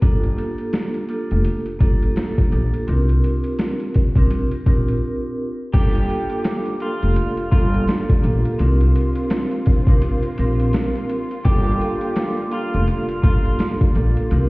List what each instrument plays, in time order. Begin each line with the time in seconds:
0.01 upright bass G1, vibraphone A#3 D4 F4 G4 A4, kick, closed hi-hat
0.23 closed hi-hat
0.37 vibraphone A#3 D4 F4 G4 A4, closed hi-hat
0.58 closed hi-hat
0.73 snare, closed hi-hat
0.94 closed hi-hat
1.09 vibraphone A#3 D4 F4 G4 A4, closed hi-hat
1.31 upright bass F1, closed hi-hat
1.45 closed hi-hat
1.66 closed hi-hat
1.79 upright bass G1, vibraphone A#3 D4 F4 G4 A4, kick, closed hi-hat
2.02 closed hi-hat
2.16 vibraphone A#3 D4 F4 G4 A4, snare, closed hi-hat
2.38 kick, closed hi-hat
2.51 upright bass A#1, vibraphone A#3 D4 F4 G4 A4, closed hi-hat
2.74 closed hi-hat
2.87 upright bass C2, vibraphone C4 D4 F4 G4 A#4, closed hi-hat
3.09 closed hi-hat
3.24 closed hi-hat
3.44 closed hi-hat
3.59 snare, closed hi-hat
3.80 closed hi-hat
3.94 kick, closed hi-hat
4.16 upright bass C2, vibraphone C4 D4 F4 G4 A#4, kick, closed hi-hat
4.31 closed hi-hat
4.51 closed hi-hat
4.66 upright bass A#1, vibraphone C4 D4 F4 G4 A#4, kick, closed hi-hat
4.88 closed hi-hat
5.73 upright bass G1, string section D3 G3 A#3 F4, vibraphone A#3 D4 F4 G4 A4, clean electric guitar G4, kick, closed hi-hat, crash, shaker
5.95 closed hi-hat, shaker
6.08 vibraphone A#3 D4 F4 G4 A4, closed hi-hat, shaker
6.30 closed hi-hat, shaker
6.44 snare, closed hi-hat, shaker
6.66 closed hi-hat, shaker
6.80 vibraphone A#3 D4 F4 G4 A4, clean electric guitar F4, closed hi-hat, shaker
7.02 upright bass F1, closed hi-hat, shaker
7.16 closed hi-hat, shaker
7.37 closed hi-hat, shaker
7.51 upright bass G1, vibraphone A#3 D4 F4 G4 A4, clean electric guitar F4, kick, closed hi-hat
7.73 closed hi-hat, shaker
7.87 vibraphone A#3 D4 F4 G4 A4, snare, closed hi-hat, shaker
8.10 kick, closed hi-hat, shaker
8.22 upright bass A#1, vibraphone A#3 D4 F4 G4 A4, closed hi-hat
8.45 closed hi-hat, shaker
8.59 upright bass C2, vibraphone C4 D4 F4 G4 A#4, string section C4, closed hi-hat, shaker
8.81 closed hi-hat, shaker
8.96 closed hi-hat, shaker
9.15 closed hi-hat, shaker
9.30 snare, closed hi-hat, shaker
9.51 closed hi-hat, shaker
9.66 kick, closed hi-hat, shaker
9.87 upright bass C2, vibraphone C4 D4 F4 G4 A#4, kick, closed hi-hat, shaker
10.02 closed hi-hat, shaker
10.23 closed hi-hat, shaker
10.37 upright bass A#1, vibraphone C4 D4 F4 G4 A#4, closed hi-hat
10.59 closed hi-hat, shaker
10.73 snare, closed hi-hat, shaker
10.96 closed hi-hat, shaker
11.09 closed hi-hat
11.31 closed hi-hat, shaker
11.44 upright bass G1, string section D3 G3, vibraphone A#3 D4 F4 G4 A4, clean electric guitar G4, kick, closed hi-hat, shaker
11.66 closed hi-hat, shaker
11.80 vibraphone A#3 D4 F4 G4 A4, closed hi-hat, shaker
12.01 closed hi-hat, shaker
12.16 snare, closed hi-hat, shaker
12.37 closed hi-hat, shaker
12.51 vibraphone A#3 D4 F4 G4 A4, clean electric guitar F4, closed hi-hat, shaker
12.74 upright bass F1, closed hi-hat, shaker
12.88 closed hi-hat, shaker
13.09 closed hi-hat, shaker
13.22 upright bass G1, vibraphone A#3 D4 F4 G4 A4, clean electric guitar F4, kick, closed hi-hat
13.45 closed hi-hat, shaker
13.59 vibraphone A#3 D4 F4 G4 A4, snare, closed hi-hat, shaker
13.81 kick, closed hi-hat, shaker
13.94 upright bass A#1, vibraphone A#3 D4 F4 G4 A4, closed hi-hat
14.17 closed hi-hat, shaker
14.30 upright bass C2, string section D3 C4, vibraphone C4 D4 F4 G4 A#4, closed hi-hat, shaker